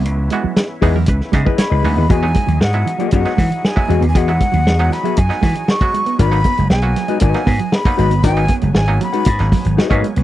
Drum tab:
HH |x-x-x-o-x-x-x-o-|x-xx-xxxxxox--xx|xxxx-xxxxxox-xxx|xxxx-xxxxxox-xxx|
SD |----o----oo-o---|----o----oo-o---|----o-o--oo-o---|----o-o--oo-o---|
BD |------o-o-oo----|o-o-----o-o--o--|o-o-----o-o--o--|o-o-----o-o--o--|

HH |xxxx-xxxxxox-xxx|
SD |----o----oo-o---|
BD |o-o-----o-o--o--|